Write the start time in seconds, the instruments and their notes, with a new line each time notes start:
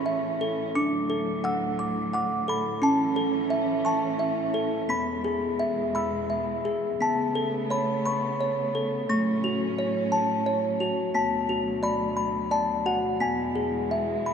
Already playing: string section A2 E3 C#4, music box A4 C#6
0.06 music box E5
0.41 music box A4
0.75 string section D2 F#3, music box D4 D6
1.10 music box A4
1.44 music box F#5 E6
1.79 music box D6
2.13 music box F#5 D6
2.48 music box A4 B5
2.82 string section E3 C#4, music box C#4 A5
3.16 music box A4
3.50 music box E5
3.85 music box A5 C#6
4.19 music box E5
4.54 music box A4
4.89 string section E2 B2 G#3, music box B3 B5
5.24 music box G#4
5.59 music box E5
5.95 music box B5 E6
6.30 music box E5
6.65 music box G#4
7.00 string section C#3 A3 B3, music box B3 A5
7.35 music box A4
7.70 music box C#5 B5
8.05 music box B5 C#6
8.41 music box C#5
8.75 music box A4
9.09 string section A2 F#3 C#4, music box A3 C#6
9.44 music box F#4
9.79 music box C#5
10.12 music box A5
10.46 music box C#5
10.80 music box F#4
11.14 string section D2 B2, music box B3 A5
11.49 music box F#4
11.83 music box D5 B5
12.17 music box B5
12.51 music box D5 A5
12.86 music box F#4 F#5
13.20 string section E2 G#3, music box B3 G#5
13.55 music box G#4
13.91 music box E5
14.26 music box B5